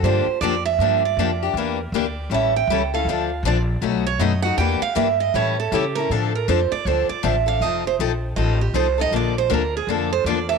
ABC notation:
X:1
M:4/4
L:1/16
Q:"Swing" 1/4=158
K:Dm
V:1 name="Steel-string acoustic guitar"
c4 d2 e4 d6 | B2 z2 d4 e2 g4 f2- | f4 d2 z4 ^c2 ^d2 ^f2 | g2 f2 e2 _e2 ^c2 A2 G2 B2 |
A2 B2 c2 d2 c2 d2 e2 f2 | _e2 c2 z4 e2 G2 c2 e2 | d2 c2 B2 ^G2 A2 c2 d2 e2 |]
V:2 name="Steel-string acoustic guitar"
[D,F,B,DG]2 z2 [D,F,B,DG] z3 [D,F,B,DG]2 z2 [D,F,B,DG] z [B,DG]2 | [E,B,DG]2 z2 [E,B,DG] z3 [E,G,^CEA]2 z2 [E,G,CEA] z [CEA]2 | [D,F,CDA]2 z2 [D,F,CDA] z3 [=B,,^F,A,^D^F]2 z2 [B,,F,A,DF] z [A,DF]2 | [E,B,DG]2 z2 [E,B,DG] z3 [E,G,^CEA]2 z2 [E,G,CEA] z [CEA]2 |
[D,F,CDA]2 z2 [D,F,CDA] z3 [D,F,CDA]2 z2 [D,F,CDA] z [CDA]2 | [F,C_EA]2 z2 [F,CEA] z3 [F,CEA]2 z2 [F,CEA] z [CEA]2 | [D,F,B,DA]2 z2 [D,F,B,DA] z3 [D,F,B,DA]2 z2 [D,F,B,DA] z [B,DA]2 |]
V:3 name="Upright bass" clef=bass
G,,2 z2 F,,4 G,,4 F,,4 | E,,4 D,,4 A,,,4 ^C,,4 | D,,4 B,,,4 =B,,,4 ^F,,4 | E,,2 z2 G,,4 A,,4 ^C,4 |
A,,4 F,,2 z2 D,,2 z2 A,,,4 | F,,,4 B,,,4 A,,,4 C,,4 | B,,,4 D,,4 F,,4 E,,4 |]